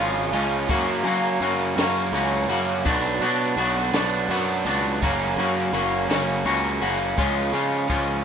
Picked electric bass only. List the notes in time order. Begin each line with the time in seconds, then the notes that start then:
Already playing: G#1
0.33 C#2
0.69 F#2
1.03 F#3
1.41 F#2
1.76 F#2
2.12 C#2
2.48 F#2
2.85 B1
3.20 B2
3.56 B1
3.93 B1
4.29 F#2
4.65 C#2
5.02 F#1
5.37 F#2
5.73 F#1
6.09 F#1
6.45 C#2
6.82 F#1
7.18 C#2
7.53 C#3
7.90 C#2